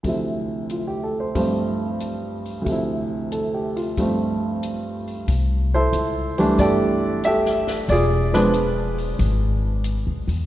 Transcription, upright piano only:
0, 0, Header, 1, 2, 480
1, 0, Start_track
1, 0, Key_signature, 0, "major"
1, 0, Tempo, 653595
1, 33, Time_signature, 4, 2, 24, 8
1, 7682, End_track
2, 0, Start_track
2, 0, Title_t, "Upright piano"
2, 0, Program_c, 0, 0
2, 23, Note_on_c, 0, 38, 33
2, 36, Note_on_c, 0, 48, 28
2, 49, Note_on_c, 0, 53, 32
2, 60, Note_on_c, 0, 64, 36
2, 522, Note_on_c, 0, 65, 33
2, 642, Note_on_c, 0, 67, 38
2, 747, Note_off_c, 0, 65, 0
2, 760, Note_on_c, 0, 69, 40
2, 847, Note_off_c, 0, 67, 0
2, 881, Note_on_c, 0, 72, 38
2, 905, Note_off_c, 0, 69, 0
2, 983, Note_off_c, 0, 53, 0
2, 990, Note_off_c, 0, 38, 0
2, 990, Note_on_c, 0, 43, 43
2, 994, Note_on_c, 0, 53, 38
2, 996, Note_off_c, 0, 48, 0
2, 999, Note_on_c, 0, 57, 41
2, 1003, Note_on_c, 0, 60, 45
2, 1009, Note_off_c, 0, 64, 0
2, 1046, Note_off_c, 0, 72, 0
2, 1920, Note_on_c, 0, 38, 42
2, 1948, Note_on_c, 0, 48, 38
2, 1954, Note_off_c, 0, 43, 0
2, 1956, Note_off_c, 0, 53, 0
2, 1959, Note_off_c, 0, 57, 0
2, 1960, Note_off_c, 0, 60, 0
2, 1974, Note_on_c, 0, 53, 38
2, 1998, Note_on_c, 0, 64, 44
2, 2439, Note_on_c, 0, 69, 35
2, 2601, Note_on_c, 0, 67, 37
2, 2743, Note_off_c, 0, 69, 0
2, 2765, Note_on_c, 0, 65, 42
2, 2850, Note_off_c, 0, 67, 0
2, 2899, Note_off_c, 0, 38, 0
2, 2913, Note_off_c, 0, 48, 0
2, 2916, Note_off_c, 0, 53, 0
2, 2922, Note_on_c, 0, 43, 42
2, 2927, Note_on_c, 0, 53, 38
2, 2931, Note_on_c, 0, 57, 41
2, 2936, Note_on_c, 0, 60, 46
2, 2938, Note_off_c, 0, 64, 0
2, 3012, Note_off_c, 0, 65, 0
2, 3880, Note_off_c, 0, 43, 0
2, 3883, Note_off_c, 0, 53, 0
2, 3885, Note_off_c, 0, 57, 0
2, 3887, Note_off_c, 0, 60, 0
2, 4218, Note_on_c, 0, 72, 68
2, 4223, Note_on_c, 0, 64, 48
2, 4224, Note_on_c, 0, 69, 51
2, 4687, Note_on_c, 0, 52, 55
2, 4692, Note_on_c, 0, 55, 51
2, 4696, Note_on_c, 0, 57, 52
2, 4702, Note_on_c, 0, 62, 62
2, 4815, Note_off_c, 0, 72, 0
2, 4842, Note_off_c, 0, 69, 0
2, 4842, Note_on_c, 0, 74, 75
2, 4853, Note_on_c, 0, 69, 58
2, 4854, Note_on_c, 0, 67, 57
2, 5145, Note_off_c, 0, 64, 0
2, 5288, Note_off_c, 0, 52, 0
2, 5291, Note_off_c, 0, 55, 0
2, 5293, Note_off_c, 0, 57, 0
2, 5295, Note_off_c, 0, 62, 0
2, 5323, Note_off_c, 0, 69, 0
2, 5323, Note_on_c, 0, 76, 80
2, 5325, Note_off_c, 0, 67, 0
2, 5334, Note_off_c, 0, 74, 0
2, 5334, Note_on_c, 0, 69, 57
2, 5336, Note_on_c, 0, 67, 62
2, 5771, Note_off_c, 0, 76, 0
2, 5776, Note_off_c, 0, 69, 0
2, 5777, Note_off_c, 0, 67, 0
2, 5797, Note_on_c, 0, 74, 76
2, 5814, Note_on_c, 0, 68, 63
2, 5817, Note_on_c, 0, 65, 59
2, 6122, Note_on_c, 0, 53, 56
2, 6125, Note_on_c, 0, 56, 53
2, 6125, Note_on_c, 0, 71, 79
2, 6129, Note_on_c, 0, 59, 52
2, 6130, Note_off_c, 0, 68, 0
2, 6132, Note_on_c, 0, 62, 59
2, 6135, Note_off_c, 0, 74, 0
2, 6141, Note_on_c, 0, 68, 46
2, 6261, Note_off_c, 0, 53, 0
2, 6262, Note_off_c, 0, 56, 0
2, 6264, Note_off_c, 0, 59, 0
2, 6266, Note_off_c, 0, 62, 0
2, 6575, Note_off_c, 0, 71, 0
2, 6737, Note_off_c, 0, 65, 0
2, 7063, Note_off_c, 0, 68, 0
2, 7682, End_track
0, 0, End_of_file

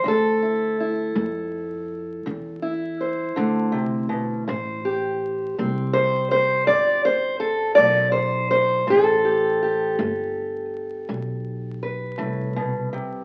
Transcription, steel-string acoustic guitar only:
0, 0, Header, 1, 2, 480
1, 0, Start_track
1, 0, Key_signature, 0, "minor"
1, 0, Tempo, 735294
1, 33, Time_signature, 12, 3, 24, 8
1, 8646, End_track
2, 0, Start_track
2, 0, Title_t, "Steel-string acoustic guitar"
2, 0, Program_c, 0, 25
2, 25, Note_on_c, 0, 50, 72
2, 52, Note_on_c, 0, 69, 80
2, 277, Note_on_c, 0, 64, 40
2, 462, Note_off_c, 0, 50, 0
2, 521, Note_off_c, 0, 64, 0
2, 524, Note_on_c, 0, 64, 43
2, 756, Note_on_c, 0, 57, 63
2, 1188, Note_off_c, 0, 57, 0
2, 1475, Note_on_c, 0, 50, 69
2, 1709, Note_off_c, 0, 64, 0
2, 1712, Note_on_c, 0, 64, 51
2, 1908, Note_off_c, 0, 50, 0
2, 1960, Note_off_c, 0, 69, 0
2, 1963, Note_on_c, 0, 72, 44
2, 2193, Note_on_c, 0, 50, 62
2, 2429, Note_on_c, 0, 48, 64
2, 2435, Note_off_c, 0, 50, 0
2, 2667, Note_off_c, 0, 48, 0
2, 2670, Note_on_c, 0, 47, 64
2, 2914, Note_off_c, 0, 47, 0
2, 2922, Note_on_c, 0, 45, 79
2, 2924, Note_off_c, 0, 72, 0
2, 2926, Note_on_c, 0, 72, 51
2, 3163, Note_off_c, 0, 64, 0
2, 3165, Note_on_c, 0, 67, 45
2, 3352, Note_off_c, 0, 45, 0
2, 3645, Note_on_c, 0, 57, 62
2, 3649, Note_on_c, 0, 60, 48
2, 3871, Note_off_c, 0, 72, 0
2, 3874, Note_on_c, 0, 72, 93
2, 4073, Note_off_c, 0, 57, 0
2, 4114, Note_off_c, 0, 72, 0
2, 4122, Note_on_c, 0, 72, 93
2, 4352, Note_off_c, 0, 72, 0
2, 4355, Note_on_c, 0, 74, 109
2, 4361, Note_on_c, 0, 45, 69
2, 4596, Note_off_c, 0, 74, 0
2, 4602, Note_on_c, 0, 72, 95
2, 4791, Note_off_c, 0, 45, 0
2, 4827, Note_off_c, 0, 72, 0
2, 4829, Note_on_c, 0, 69, 87
2, 5057, Note_off_c, 0, 69, 0
2, 5060, Note_on_c, 0, 74, 103
2, 5076, Note_on_c, 0, 57, 65
2, 5296, Note_off_c, 0, 74, 0
2, 5299, Note_on_c, 0, 72, 87
2, 5508, Note_off_c, 0, 57, 0
2, 5546, Note_off_c, 0, 72, 0
2, 5553, Note_on_c, 0, 72, 89
2, 5771, Note_off_c, 0, 67, 0
2, 5790, Note_on_c, 0, 45, 73
2, 5795, Note_off_c, 0, 72, 0
2, 5811, Note_on_c, 0, 69, 78
2, 6037, Note_on_c, 0, 67, 42
2, 6225, Note_off_c, 0, 45, 0
2, 6276, Note_off_c, 0, 67, 0
2, 6283, Note_on_c, 0, 67, 44
2, 6521, Note_off_c, 0, 60, 0
2, 6525, Note_on_c, 0, 57, 64
2, 6952, Note_off_c, 0, 57, 0
2, 7238, Note_on_c, 0, 45, 73
2, 7668, Note_off_c, 0, 45, 0
2, 7718, Note_off_c, 0, 69, 0
2, 7720, Note_on_c, 0, 71, 44
2, 7949, Note_on_c, 0, 45, 61
2, 8192, Note_off_c, 0, 45, 0
2, 8201, Note_on_c, 0, 47, 62
2, 8437, Note_off_c, 0, 47, 0
2, 8439, Note_on_c, 0, 48, 58
2, 8646, Note_off_c, 0, 48, 0
2, 8646, Note_off_c, 0, 67, 0
2, 8646, Note_off_c, 0, 71, 0
2, 8646, End_track
0, 0, End_of_file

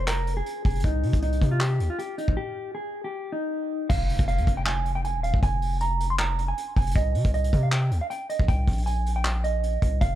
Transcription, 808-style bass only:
0, 0, Header, 1, 2, 480
1, 0, Start_track
1, 0, Key_signature, -4, "minor"
1, 0, Tempo, 382166
1, 1056, Time_signature, 4, 2, 24, 8
1, 12751, End_track
2, 0, Start_track
2, 0, Title_t, "808-style bass"
2, 0, Program_c, 0, 38
2, 0, Note_on_c, 0, 29, 111
2, 526, Note_off_c, 0, 29, 0
2, 817, Note_on_c, 0, 29, 102
2, 1047, Note_off_c, 0, 29, 0
2, 1056, Note_on_c, 0, 36, 105
2, 1297, Note_on_c, 0, 48, 99
2, 1316, Note_off_c, 0, 36, 0
2, 1418, Note_off_c, 0, 48, 0
2, 1424, Note_on_c, 0, 36, 103
2, 1763, Note_off_c, 0, 36, 0
2, 1777, Note_on_c, 0, 48, 110
2, 2257, Note_on_c, 0, 39, 101
2, 2276, Note_off_c, 0, 48, 0
2, 2378, Note_off_c, 0, 39, 0
2, 2865, Note_on_c, 0, 34, 103
2, 2973, Note_off_c, 0, 34, 0
2, 4897, Note_on_c, 0, 29, 110
2, 5249, Note_off_c, 0, 29, 0
2, 5264, Note_on_c, 0, 29, 109
2, 5504, Note_on_c, 0, 41, 104
2, 5523, Note_off_c, 0, 29, 0
2, 5611, Note_off_c, 0, 41, 0
2, 5617, Note_on_c, 0, 29, 107
2, 6464, Note_on_c, 0, 27, 100
2, 6483, Note_off_c, 0, 29, 0
2, 6692, Note_off_c, 0, 27, 0
2, 6704, Note_on_c, 0, 36, 106
2, 6809, Note_off_c, 0, 36, 0
2, 6816, Note_on_c, 0, 29, 113
2, 8206, Note_off_c, 0, 29, 0
2, 8497, Note_on_c, 0, 29, 105
2, 8727, Note_off_c, 0, 29, 0
2, 8736, Note_on_c, 0, 36, 108
2, 8977, Note_on_c, 0, 48, 103
2, 8996, Note_off_c, 0, 36, 0
2, 9098, Note_off_c, 0, 48, 0
2, 9104, Note_on_c, 0, 36, 103
2, 9443, Note_off_c, 0, 36, 0
2, 9458, Note_on_c, 0, 48, 112
2, 9937, Note_on_c, 0, 39, 101
2, 9956, Note_off_c, 0, 48, 0
2, 10058, Note_off_c, 0, 39, 0
2, 10544, Note_on_c, 0, 34, 103
2, 10649, Note_off_c, 0, 34, 0
2, 10657, Note_on_c, 0, 36, 116
2, 10887, Note_off_c, 0, 36, 0
2, 10896, Note_on_c, 0, 34, 101
2, 12286, Note_off_c, 0, 34, 0
2, 12337, Note_on_c, 0, 36, 105
2, 12567, Note_off_c, 0, 36, 0
2, 12577, Note_on_c, 0, 29, 112
2, 12751, Note_off_c, 0, 29, 0
2, 12751, End_track
0, 0, End_of_file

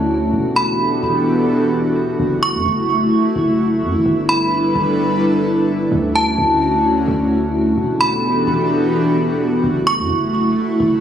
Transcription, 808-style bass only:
0, 0, Header, 1, 2, 480
1, 0, Start_track
1, 0, Tempo, 465116
1, 346, Time_signature, 4, 2, 24, 8
1, 11356, End_track
2, 0, Start_track
2, 0, Title_t, "808-style bass"
2, 0, Program_c, 0, 38
2, 0, Note_on_c, 0, 38, 104
2, 317, Note_off_c, 0, 38, 0
2, 346, Note_on_c, 0, 28, 104
2, 1037, Note_off_c, 0, 28, 0
2, 1065, Note_on_c, 0, 28, 97
2, 2224, Note_off_c, 0, 28, 0
2, 2266, Note_on_c, 0, 30, 108
2, 2626, Note_on_c, 0, 42, 102
2, 2642, Note_off_c, 0, 30, 0
2, 2740, Note_off_c, 0, 42, 0
2, 2746, Note_on_c, 0, 30, 107
2, 3207, Note_off_c, 0, 30, 0
2, 3465, Note_on_c, 0, 30, 112
2, 3946, Note_on_c, 0, 42, 97
2, 3962, Note_off_c, 0, 30, 0
2, 4067, Note_on_c, 0, 30, 101
2, 4082, Note_off_c, 0, 42, 0
2, 4180, Note_off_c, 0, 30, 0
2, 4187, Note_on_c, 0, 31, 111
2, 4878, Note_off_c, 0, 31, 0
2, 4906, Note_on_c, 0, 31, 101
2, 6065, Note_off_c, 0, 31, 0
2, 6106, Note_on_c, 0, 38, 110
2, 6566, Note_off_c, 0, 38, 0
2, 6585, Note_on_c, 0, 38, 104
2, 7277, Note_off_c, 0, 38, 0
2, 7305, Note_on_c, 0, 38, 102
2, 7997, Note_off_c, 0, 38, 0
2, 8025, Note_on_c, 0, 28, 117
2, 8716, Note_off_c, 0, 28, 0
2, 8745, Note_on_c, 0, 28, 98
2, 9904, Note_off_c, 0, 28, 0
2, 9946, Note_on_c, 0, 30, 105
2, 10306, Note_on_c, 0, 42, 108
2, 10321, Note_off_c, 0, 30, 0
2, 10420, Note_off_c, 0, 42, 0
2, 10425, Note_on_c, 0, 30, 111
2, 10886, Note_off_c, 0, 30, 0
2, 11146, Note_on_c, 0, 30, 111
2, 11356, Note_off_c, 0, 30, 0
2, 11356, End_track
0, 0, End_of_file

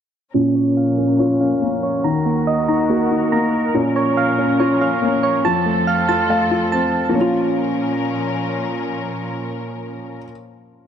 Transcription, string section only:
0, 0, Header, 1, 2, 480
1, 0, Start_track
1, 0, Key_signature, -5, "minor"
1, 0, Tempo, 425532
1, 386, Time_signature, 4, 2, 24, 8
1, 12262, End_track
2, 0, Start_track
2, 0, Title_t, "String section"
2, 0, Program_c, 0, 48
2, 386, Note_on_c, 0, 46, 74
2, 386, Note_on_c, 0, 61, 70
2, 386, Note_on_c, 0, 70, 84
2, 387, Note_on_c, 0, 53, 68
2, 2287, Note_off_c, 0, 46, 0
2, 2287, Note_off_c, 0, 53, 0
2, 2287, Note_off_c, 0, 61, 0
2, 2287, Note_off_c, 0, 70, 0
2, 2306, Note_on_c, 0, 39, 77
2, 2306, Note_on_c, 0, 51, 70
2, 2307, Note_on_c, 0, 66, 72
2, 2307, Note_on_c, 0, 70, 87
2, 4207, Note_off_c, 0, 39, 0
2, 4207, Note_off_c, 0, 51, 0
2, 4207, Note_off_c, 0, 66, 0
2, 4228, Note_on_c, 0, 46, 77
2, 4228, Note_on_c, 0, 53, 72
2, 4228, Note_on_c, 0, 61, 72
2, 6108, Note_off_c, 0, 70, 0
2, 6128, Note_off_c, 0, 46, 0
2, 6128, Note_off_c, 0, 61, 0
2, 6144, Note_on_c, 0, 41, 79
2, 6144, Note_on_c, 0, 60, 75
2, 6145, Note_on_c, 0, 69, 89
2, 8029, Note_off_c, 0, 53, 0
2, 8046, Note_off_c, 0, 41, 0
2, 8046, Note_off_c, 0, 60, 0
2, 8047, Note_off_c, 0, 69, 0
2, 8068, Note_on_c, 0, 46, 78
2, 8068, Note_on_c, 0, 53, 71
2, 8068, Note_on_c, 0, 61, 72
2, 8068, Note_on_c, 0, 70, 83
2, 11544, Note_off_c, 0, 53, 0
2, 11544, Note_off_c, 0, 61, 0
2, 11544, Note_off_c, 0, 70, 0
2, 11545, Note_off_c, 0, 46, 0
2, 12262, End_track
0, 0, End_of_file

